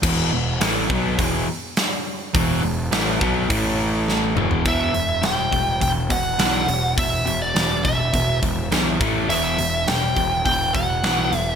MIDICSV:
0, 0, Header, 1, 5, 480
1, 0, Start_track
1, 0, Key_signature, 1, "minor"
1, 0, Tempo, 579710
1, 25, Time_signature, 4, 2, 24, 8
1, 9567, End_track
2, 0, Start_track
2, 0, Title_t, "Lead electric guitar"
2, 0, Program_c, 0, 29
2, 3875, Note_on_c, 0, 76, 84
2, 4351, Note_on_c, 0, 79, 88
2, 4358, Note_off_c, 0, 76, 0
2, 4789, Note_off_c, 0, 79, 0
2, 4820, Note_on_c, 0, 79, 107
2, 4884, Note_off_c, 0, 79, 0
2, 5064, Note_on_c, 0, 78, 92
2, 5745, Note_off_c, 0, 78, 0
2, 5783, Note_on_c, 0, 76, 89
2, 6113, Note_off_c, 0, 76, 0
2, 6143, Note_on_c, 0, 74, 78
2, 6494, Note_off_c, 0, 74, 0
2, 6497, Note_on_c, 0, 76, 77
2, 6943, Note_off_c, 0, 76, 0
2, 7696, Note_on_c, 0, 76, 84
2, 8175, Note_on_c, 0, 79, 88
2, 8191, Note_off_c, 0, 76, 0
2, 8645, Note_off_c, 0, 79, 0
2, 8655, Note_on_c, 0, 79, 109
2, 8895, Note_off_c, 0, 79, 0
2, 8898, Note_on_c, 0, 78, 101
2, 9436, Note_off_c, 0, 78, 0
2, 9436, Note_on_c, 0, 76, 101
2, 9567, Note_off_c, 0, 76, 0
2, 9567, End_track
3, 0, Start_track
3, 0, Title_t, "Overdriven electric guitar"
3, 0, Program_c, 1, 29
3, 19, Note_on_c, 1, 40, 98
3, 20, Note_on_c, 1, 47, 98
3, 24, Note_on_c, 1, 52, 106
3, 254, Note_off_c, 1, 40, 0
3, 254, Note_off_c, 1, 47, 0
3, 256, Note_off_c, 1, 52, 0
3, 268, Note_on_c, 1, 40, 67
3, 271, Note_on_c, 1, 47, 74
3, 457, Note_off_c, 1, 40, 0
3, 459, Note_off_c, 1, 47, 0
3, 503, Note_on_c, 1, 45, 81
3, 507, Note_on_c, 1, 52, 99
3, 509, Note_on_c, 1, 57, 89
3, 735, Note_off_c, 1, 45, 0
3, 737, Note_off_c, 1, 52, 0
3, 738, Note_off_c, 1, 57, 0
3, 739, Note_on_c, 1, 47, 87
3, 744, Note_on_c, 1, 54, 96
3, 748, Note_on_c, 1, 59, 94
3, 972, Note_off_c, 1, 47, 0
3, 975, Note_off_c, 1, 54, 0
3, 977, Note_off_c, 1, 59, 0
3, 980, Note_on_c, 1, 40, 87
3, 983, Note_on_c, 1, 47, 90
3, 985, Note_on_c, 1, 52, 103
3, 1213, Note_off_c, 1, 40, 0
3, 1214, Note_off_c, 1, 47, 0
3, 1215, Note_off_c, 1, 52, 0
3, 1941, Note_on_c, 1, 40, 94
3, 1945, Note_on_c, 1, 47, 113
3, 1946, Note_on_c, 1, 52, 114
3, 2170, Note_off_c, 1, 40, 0
3, 2174, Note_off_c, 1, 47, 0
3, 2174, Note_off_c, 1, 52, 0
3, 2180, Note_on_c, 1, 40, 69
3, 2183, Note_on_c, 1, 47, 83
3, 2370, Note_off_c, 1, 40, 0
3, 2372, Note_off_c, 1, 47, 0
3, 2421, Note_on_c, 1, 45, 93
3, 2424, Note_on_c, 1, 52, 105
3, 2426, Note_on_c, 1, 57, 87
3, 2651, Note_off_c, 1, 45, 0
3, 2652, Note_off_c, 1, 52, 0
3, 2653, Note_off_c, 1, 57, 0
3, 2655, Note_on_c, 1, 47, 79
3, 2660, Note_on_c, 1, 54, 84
3, 2663, Note_on_c, 1, 59, 91
3, 2884, Note_off_c, 1, 47, 0
3, 2887, Note_on_c, 1, 45, 82
3, 2890, Note_off_c, 1, 54, 0
3, 2892, Note_off_c, 1, 59, 0
3, 2895, Note_on_c, 1, 52, 98
3, 2895, Note_on_c, 1, 57, 101
3, 3602, Note_off_c, 1, 45, 0
3, 3602, Note_off_c, 1, 52, 0
3, 3607, Note_off_c, 1, 57, 0
3, 3607, Note_on_c, 1, 40, 90
3, 3612, Note_on_c, 1, 52, 93
3, 3614, Note_on_c, 1, 47, 99
3, 3833, Note_off_c, 1, 40, 0
3, 3840, Note_off_c, 1, 47, 0
3, 3841, Note_off_c, 1, 52, 0
3, 3843, Note_on_c, 1, 40, 96
3, 3849, Note_on_c, 1, 47, 91
3, 3851, Note_on_c, 1, 52, 106
3, 4073, Note_off_c, 1, 40, 0
3, 4077, Note_off_c, 1, 47, 0
3, 4077, Note_off_c, 1, 52, 0
3, 4086, Note_on_c, 1, 40, 63
3, 4088, Note_on_c, 1, 47, 85
3, 4305, Note_off_c, 1, 40, 0
3, 4306, Note_off_c, 1, 47, 0
3, 4321, Note_on_c, 1, 40, 71
3, 4323, Note_on_c, 1, 47, 71
3, 4543, Note_off_c, 1, 40, 0
3, 4544, Note_off_c, 1, 47, 0
3, 4567, Note_on_c, 1, 40, 66
3, 4567, Note_on_c, 1, 47, 74
3, 4786, Note_off_c, 1, 40, 0
3, 4786, Note_off_c, 1, 47, 0
3, 4806, Note_on_c, 1, 40, 69
3, 4807, Note_on_c, 1, 47, 76
3, 5025, Note_off_c, 1, 40, 0
3, 5026, Note_off_c, 1, 47, 0
3, 5045, Note_on_c, 1, 40, 65
3, 5048, Note_on_c, 1, 47, 70
3, 5265, Note_off_c, 1, 40, 0
3, 5266, Note_off_c, 1, 47, 0
3, 5286, Note_on_c, 1, 40, 81
3, 5290, Note_on_c, 1, 47, 83
3, 5293, Note_on_c, 1, 52, 102
3, 5513, Note_off_c, 1, 40, 0
3, 5515, Note_off_c, 1, 47, 0
3, 5519, Note_off_c, 1, 52, 0
3, 5523, Note_on_c, 1, 40, 68
3, 5525, Note_on_c, 1, 47, 89
3, 5744, Note_off_c, 1, 40, 0
3, 5745, Note_off_c, 1, 47, 0
3, 5766, Note_on_c, 1, 40, 64
3, 5769, Note_on_c, 1, 47, 84
3, 5986, Note_off_c, 1, 40, 0
3, 5987, Note_off_c, 1, 47, 0
3, 6010, Note_on_c, 1, 40, 74
3, 6013, Note_on_c, 1, 47, 81
3, 6228, Note_off_c, 1, 40, 0
3, 6229, Note_off_c, 1, 47, 0
3, 6250, Note_on_c, 1, 40, 72
3, 6252, Note_on_c, 1, 47, 84
3, 6468, Note_off_c, 1, 40, 0
3, 6469, Note_off_c, 1, 47, 0
3, 6490, Note_on_c, 1, 40, 67
3, 6494, Note_on_c, 1, 47, 75
3, 6708, Note_off_c, 1, 40, 0
3, 6710, Note_off_c, 1, 47, 0
3, 6734, Note_on_c, 1, 40, 73
3, 6740, Note_on_c, 1, 47, 84
3, 6950, Note_off_c, 1, 40, 0
3, 6954, Note_off_c, 1, 47, 0
3, 6974, Note_on_c, 1, 40, 68
3, 6979, Note_on_c, 1, 47, 68
3, 7191, Note_off_c, 1, 40, 0
3, 7193, Note_off_c, 1, 47, 0
3, 7216, Note_on_c, 1, 40, 78
3, 7218, Note_on_c, 1, 47, 87
3, 7222, Note_on_c, 1, 52, 96
3, 7442, Note_off_c, 1, 40, 0
3, 7443, Note_off_c, 1, 47, 0
3, 7444, Note_off_c, 1, 52, 0
3, 7456, Note_on_c, 1, 45, 83
3, 7463, Note_on_c, 1, 52, 100
3, 7465, Note_on_c, 1, 57, 106
3, 7682, Note_off_c, 1, 45, 0
3, 7685, Note_off_c, 1, 52, 0
3, 7686, Note_off_c, 1, 57, 0
3, 7691, Note_on_c, 1, 40, 98
3, 7696, Note_on_c, 1, 47, 91
3, 7699, Note_on_c, 1, 52, 98
3, 7919, Note_off_c, 1, 40, 0
3, 7922, Note_off_c, 1, 47, 0
3, 7923, Note_off_c, 1, 52, 0
3, 7934, Note_on_c, 1, 40, 70
3, 7939, Note_on_c, 1, 47, 87
3, 8151, Note_off_c, 1, 40, 0
3, 8154, Note_off_c, 1, 47, 0
3, 8181, Note_on_c, 1, 40, 59
3, 8184, Note_on_c, 1, 47, 86
3, 8396, Note_off_c, 1, 40, 0
3, 8397, Note_off_c, 1, 47, 0
3, 8421, Note_on_c, 1, 40, 68
3, 8424, Note_on_c, 1, 47, 79
3, 8636, Note_off_c, 1, 40, 0
3, 8637, Note_off_c, 1, 47, 0
3, 8661, Note_on_c, 1, 40, 68
3, 8664, Note_on_c, 1, 47, 84
3, 8876, Note_off_c, 1, 40, 0
3, 8878, Note_off_c, 1, 47, 0
3, 8897, Note_on_c, 1, 40, 67
3, 8897, Note_on_c, 1, 47, 74
3, 9114, Note_off_c, 1, 47, 0
3, 9115, Note_off_c, 1, 40, 0
3, 9137, Note_on_c, 1, 40, 82
3, 9141, Note_on_c, 1, 47, 90
3, 9144, Note_on_c, 1, 52, 93
3, 9365, Note_off_c, 1, 40, 0
3, 9367, Note_off_c, 1, 47, 0
3, 9368, Note_off_c, 1, 52, 0
3, 9377, Note_on_c, 1, 40, 71
3, 9381, Note_on_c, 1, 47, 81
3, 9567, Note_off_c, 1, 40, 0
3, 9567, Note_off_c, 1, 47, 0
3, 9567, End_track
4, 0, Start_track
4, 0, Title_t, "Picked electric bass"
4, 0, Program_c, 2, 34
4, 27, Note_on_c, 2, 28, 97
4, 248, Note_off_c, 2, 28, 0
4, 271, Note_on_c, 2, 28, 76
4, 490, Note_off_c, 2, 28, 0
4, 511, Note_on_c, 2, 33, 100
4, 730, Note_off_c, 2, 33, 0
4, 742, Note_on_c, 2, 35, 101
4, 965, Note_off_c, 2, 35, 0
4, 981, Note_on_c, 2, 28, 93
4, 1203, Note_off_c, 2, 28, 0
4, 1943, Note_on_c, 2, 28, 93
4, 2163, Note_off_c, 2, 28, 0
4, 2179, Note_on_c, 2, 28, 81
4, 2401, Note_off_c, 2, 28, 0
4, 2420, Note_on_c, 2, 33, 86
4, 2641, Note_off_c, 2, 33, 0
4, 2662, Note_on_c, 2, 35, 100
4, 2881, Note_off_c, 2, 35, 0
4, 2900, Note_on_c, 2, 33, 82
4, 3583, Note_off_c, 2, 33, 0
4, 3609, Note_on_c, 2, 28, 97
4, 3834, Note_off_c, 2, 28, 0
4, 3855, Note_on_c, 2, 28, 85
4, 4083, Note_off_c, 2, 28, 0
4, 4088, Note_on_c, 2, 28, 82
4, 4323, Note_off_c, 2, 28, 0
4, 4337, Note_on_c, 2, 28, 84
4, 4567, Note_off_c, 2, 28, 0
4, 4575, Note_on_c, 2, 28, 99
4, 4806, Note_off_c, 2, 28, 0
4, 4816, Note_on_c, 2, 28, 90
4, 5047, Note_off_c, 2, 28, 0
4, 5055, Note_on_c, 2, 28, 88
4, 5286, Note_off_c, 2, 28, 0
4, 5293, Note_on_c, 2, 35, 81
4, 5526, Note_off_c, 2, 35, 0
4, 5529, Note_on_c, 2, 28, 92
4, 5764, Note_off_c, 2, 28, 0
4, 5774, Note_on_c, 2, 28, 98
4, 6006, Note_off_c, 2, 28, 0
4, 6014, Note_on_c, 2, 28, 88
4, 6247, Note_off_c, 2, 28, 0
4, 6258, Note_on_c, 2, 28, 85
4, 6489, Note_off_c, 2, 28, 0
4, 6497, Note_on_c, 2, 28, 81
4, 6729, Note_off_c, 2, 28, 0
4, 6737, Note_on_c, 2, 28, 88
4, 6969, Note_off_c, 2, 28, 0
4, 6978, Note_on_c, 2, 28, 91
4, 7206, Note_off_c, 2, 28, 0
4, 7211, Note_on_c, 2, 35, 87
4, 7446, Note_off_c, 2, 35, 0
4, 7456, Note_on_c, 2, 33, 103
4, 7684, Note_off_c, 2, 33, 0
4, 7689, Note_on_c, 2, 28, 94
4, 7925, Note_off_c, 2, 28, 0
4, 7941, Note_on_c, 2, 28, 99
4, 8170, Note_off_c, 2, 28, 0
4, 8175, Note_on_c, 2, 28, 91
4, 8409, Note_off_c, 2, 28, 0
4, 8417, Note_on_c, 2, 28, 94
4, 8651, Note_off_c, 2, 28, 0
4, 8656, Note_on_c, 2, 28, 92
4, 8891, Note_off_c, 2, 28, 0
4, 8897, Note_on_c, 2, 28, 90
4, 9131, Note_off_c, 2, 28, 0
4, 9137, Note_on_c, 2, 35, 82
4, 9372, Note_off_c, 2, 35, 0
4, 9381, Note_on_c, 2, 28, 96
4, 9567, Note_off_c, 2, 28, 0
4, 9567, End_track
5, 0, Start_track
5, 0, Title_t, "Drums"
5, 27, Note_on_c, 9, 36, 112
5, 27, Note_on_c, 9, 49, 104
5, 109, Note_off_c, 9, 36, 0
5, 110, Note_off_c, 9, 49, 0
5, 505, Note_on_c, 9, 46, 67
5, 509, Note_on_c, 9, 38, 119
5, 588, Note_off_c, 9, 46, 0
5, 592, Note_off_c, 9, 38, 0
5, 744, Note_on_c, 9, 36, 99
5, 827, Note_off_c, 9, 36, 0
5, 983, Note_on_c, 9, 36, 108
5, 986, Note_on_c, 9, 46, 67
5, 1066, Note_off_c, 9, 36, 0
5, 1069, Note_off_c, 9, 46, 0
5, 1463, Note_on_c, 9, 46, 59
5, 1467, Note_on_c, 9, 38, 109
5, 1546, Note_off_c, 9, 46, 0
5, 1550, Note_off_c, 9, 38, 0
5, 1943, Note_on_c, 9, 36, 121
5, 1947, Note_on_c, 9, 46, 67
5, 2025, Note_off_c, 9, 36, 0
5, 2029, Note_off_c, 9, 46, 0
5, 2421, Note_on_c, 9, 46, 60
5, 2425, Note_on_c, 9, 38, 117
5, 2504, Note_off_c, 9, 46, 0
5, 2508, Note_off_c, 9, 38, 0
5, 2660, Note_on_c, 9, 36, 101
5, 2743, Note_off_c, 9, 36, 0
5, 2900, Note_on_c, 9, 36, 113
5, 2900, Note_on_c, 9, 46, 63
5, 2983, Note_off_c, 9, 36, 0
5, 2983, Note_off_c, 9, 46, 0
5, 3382, Note_on_c, 9, 38, 59
5, 3465, Note_off_c, 9, 38, 0
5, 3616, Note_on_c, 9, 45, 96
5, 3699, Note_off_c, 9, 45, 0
5, 3733, Note_on_c, 9, 43, 85
5, 3816, Note_off_c, 9, 43, 0
5, 3854, Note_on_c, 9, 46, 72
5, 3856, Note_on_c, 9, 36, 110
5, 3937, Note_off_c, 9, 46, 0
5, 3938, Note_off_c, 9, 36, 0
5, 4093, Note_on_c, 9, 46, 52
5, 4176, Note_off_c, 9, 46, 0
5, 4332, Note_on_c, 9, 46, 77
5, 4336, Note_on_c, 9, 38, 112
5, 4414, Note_off_c, 9, 46, 0
5, 4418, Note_off_c, 9, 38, 0
5, 4575, Note_on_c, 9, 36, 79
5, 4577, Note_on_c, 9, 46, 49
5, 4658, Note_off_c, 9, 36, 0
5, 4660, Note_off_c, 9, 46, 0
5, 4815, Note_on_c, 9, 36, 74
5, 4818, Note_on_c, 9, 46, 67
5, 4897, Note_off_c, 9, 36, 0
5, 4901, Note_off_c, 9, 46, 0
5, 5052, Note_on_c, 9, 46, 63
5, 5054, Note_on_c, 9, 36, 83
5, 5135, Note_off_c, 9, 46, 0
5, 5137, Note_off_c, 9, 36, 0
5, 5292, Note_on_c, 9, 46, 78
5, 5296, Note_on_c, 9, 38, 106
5, 5375, Note_off_c, 9, 46, 0
5, 5379, Note_off_c, 9, 38, 0
5, 5535, Note_on_c, 9, 46, 54
5, 5617, Note_off_c, 9, 46, 0
5, 5777, Note_on_c, 9, 36, 121
5, 5780, Note_on_c, 9, 46, 82
5, 5860, Note_off_c, 9, 36, 0
5, 5863, Note_off_c, 9, 46, 0
5, 6020, Note_on_c, 9, 46, 52
5, 6103, Note_off_c, 9, 46, 0
5, 6260, Note_on_c, 9, 46, 76
5, 6264, Note_on_c, 9, 38, 104
5, 6343, Note_off_c, 9, 46, 0
5, 6347, Note_off_c, 9, 38, 0
5, 6498, Note_on_c, 9, 36, 85
5, 6498, Note_on_c, 9, 46, 50
5, 6581, Note_off_c, 9, 36, 0
5, 6581, Note_off_c, 9, 46, 0
5, 6737, Note_on_c, 9, 36, 82
5, 6739, Note_on_c, 9, 46, 68
5, 6820, Note_off_c, 9, 36, 0
5, 6821, Note_off_c, 9, 46, 0
5, 6978, Note_on_c, 9, 36, 87
5, 6981, Note_on_c, 9, 46, 58
5, 7061, Note_off_c, 9, 36, 0
5, 7063, Note_off_c, 9, 46, 0
5, 7219, Note_on_c, 9, 46, 58
5, 7224, Note_on_c, 9, 38, 90
5, 7302, Note_off_c, 9, 46, 0
5, 7306, Note_off_c, 9, 38, 0
5, 7458, Note_on_c, 9, 36, 115
5, 7462, Note_on_c, 9, 46, 53
5, 7541, Note_off_c, 9, 36, 0
5, 7545, Note_off_c, 9, 46, 0
5, 7701, Note_on_c, 9, 46, 76
5, 7784, Note_off_c, 9, 46, 0
5, 7937, Note_on_c, 9, 46, 55
5, 8020, Note_off_c, 9, 46, 0
5, 8178, Note_on_c, 9, 46, 70
5, 8182, Note_on_c, 9, 38, 118
5, 8261, Note_off_c, 9, 46, 0
5, 8265, Note_off_c, 9, 38, 0
5, 8415, Note_on_c, 9, 46, 47
5, 8417, Note_on_c, 9, 36, 75
5, 8498, Note_off_c, 9, 46, 0
5, 8500, Note_off_c, 9, 36, 0
5, 8657, Note_on_c, 9, 36, 77
5, 8657, Note_on_c, 9, 46, 70
5, 8740, Note_off_c, 9, 36, 0
5, 8740, Note_off_c, 9, 46, 0
5, 8896, Note_on_c, 9, 46, 52
5, 8897, Note_on_c, 9, 36, 85
5, 8979, Note_off_c, 9, 46, 0
5, 8980, Note_off_c, 9, 36, 0
5, 9139, Note_on_c, 9, 46, 75
5, 9143, Note_on_c, 9, 38, 103
5, 9222, Note_off_c, 9, 46, 0
5, 9226, Note_off_c, 9, 38, 0
5, 9378, Note_on_c, 9, 46, 57
5, 9460, Note_off_c, 9, 46, 0
5, 9567, End_track
0, 0, End_of_file